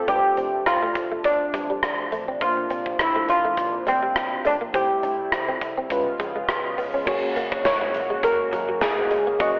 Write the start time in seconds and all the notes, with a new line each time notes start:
Already playing: C3 A3
0.07 F1 F3 A3 D4 F4 G4 B4, kick, closed hi-hat
0.16 C5
0.24 muted clean electric guitar stroke
0.37 F1 C4, closed hi-hat
0.66 F1 F4, cross-stick, closed hi-hat
0.83 A3
0.95 F1, muted clean electric guitar stroke, kick, closed hi-hat
1.12 A3
1.24 F1 D4, muted clean electric guitar stroke, kick, closed hi-hat
1.54 A1 G3, kick, closed hi-hat
1.70 G3
1.83 F1, muted clean electric guitar stroke, cross-stick, closed hi-hat
2.12 A1 A3, closed hi-hat
2.28 C4
2.40 A#1 A#2 A#3 D4 F4 C5, kick, closed hi-hat
2.57 muted clean electric guitar stroke
2.70 A#1 C4, closed hi-hat
2.86 kick
2.99 A#1 E4, cross-stick, closed hi-hat
3.16 A3
3.28 A#1 F4, muted clean electric guitar stroke, closed hi-hat
3.45 A3
3.57 A#1, muted clean electric guitar stroke, kick, closed hi-hat
3.86 D2 G3 C4, closed hi-hat
4.03 G3
4.16 A#1, muted clean electric guitar stroke, cross-stick, closed hi-hat
4.44 A#1 A3 D4, closed hi-hat
4.61 A#3
4.73 C2 C3 G3 A3 C4 E4 G4 C5, kick, closed hi-hat
4.90 muted clean electric guitar stroke
5.03 C2 D4, closed hi-hat
5.32 C2, cross-stick, closed hi-hat
5.48 C4
5.61 C2, muted clean electric guitar stroke, kick, closed hi-hat
5.77 C4
5.90 C#2 C#3 G#3 B3 C#4 F4 B4, muted clean electric guitar stroke, kick, closed hi-hat
6.20 F2 G#3, kick, closed hi-hat
6.36 G#3
6.49 C#2, muted clean electric guitar stroke, cross-stick, closed hi-hat
6.78 F1 B3, open hi-hat
6.94 C#4
7.06 F#1 C#3 F#3 G#3 A#3 C#4 F#4 G#4 C#5, kick, crash
7.23 muted clean electric guitar stroke
7.36 F#1 A#3, closed hi-hat
7.52 kick
7.65 F#1 C#5, snare, closed hi-hat, tambourine
7.81 G#3
7.94 A#1, muted clean electric guitar stroke, closed hi-hat
8.10 G#3
8.23 F#1 A#4, muted clean electric guitar stroke, kick, closed hi-hat
8.53 G#1 F#3, closed hi-hat
8.69 F#3
8.81 F#1 G#4, snare, closed hi-hat, tambourine
9.11 F#1 G#3, closed hi-hat
9.27 A#3
9.39 F#1 E3 F#3 A#3 C#4 F#4 G#4 D#5, kick, closed hi-hat
9.56 muted clean electric guitar stroke